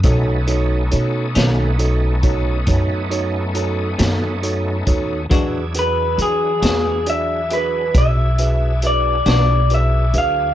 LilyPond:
<<
  \new Staff \with { instrumentName = "Clean electric guitar" } { \time 12/8 \key e \major \tempo 4. = 46 r1. | r8 b'8 gis'4 e''8 b'8 e''4 d''8 d''8 e''8 eis''8 | }
  \new Staff \with { instrumentName = "Tine electric piano" } { \time 12/8 \key e \major <dis' fis' a' cis''>8 <dis' fis' a' cis''>8 <dis' fis' a' cis''>8 <dis' fis' a' cis''>8 <dis' fis' a' cis''>8 <dis' fis' a' cis''>8 <dis' fis' a' cis''>8 <dis' fis' a' cis''>8 <dis' fis' a' cis''>8 <dis' fis' a' cis''>8 <dis' fis' a' cis''>8 <dis' fis' a' cis''>8 | <d' fis' gis' b'>8 <d' fis' gis' b'>8 <d' fis' gis' b'>8 <d' fis' gis' b'>8 <d' fis' gis' d''>8 <d' fis' gis' b'>8 <d' fis' gis' cis''>8 <d' fis' gis' b'>8 <d' fis' gis' b'>8 <d' fis' gis' b'>8 <d' fis' gis' b'>8 <d' fis' gis' b'>8 | }
  \new Staff \with { instrumentName = "Tonewheel organ" } { \time 12/8 \key e \major <a b cis' dis'>1. | <fis d' e' gis'>1. | }
  \new Staff \with { instrumentName = "Clean electric guitar" } { \clef bass \time 12/8 \key e \major r4. <b, dis a cis'>8 r2 r8 <b, dis a cis'>8 r4 | <e gis d' fis'>8 r4 <e gis d' fis'>8 r2 r8 <e gis d' fis'>8 r4 | }
  \new Staff \with { instrumentName = "Upright bass" } { \clef bass \time 12/8 \key e \major b,,4 b,8 b,,4. fis,4. fis,4 dis,8 | e,4 e8 e,4. b,,4. b,,4 d,8 | }
  \new DrumStaff \with { instrumentName = "Drums" } \drummode { \time 12/8 <hh bd>8 hh8 hh8 <hh sn>8 hh8 <hh bd>8 <hh bd>8 hh8 hh8 <hh sn>8 hh8 <hh bd>8 | <hh bd>8 hh8 hh8 <hh sn>8 hh8 hh8 <hh bd>8 hh8 hh8 <hh sn>8 hh8 hh8 | }
>>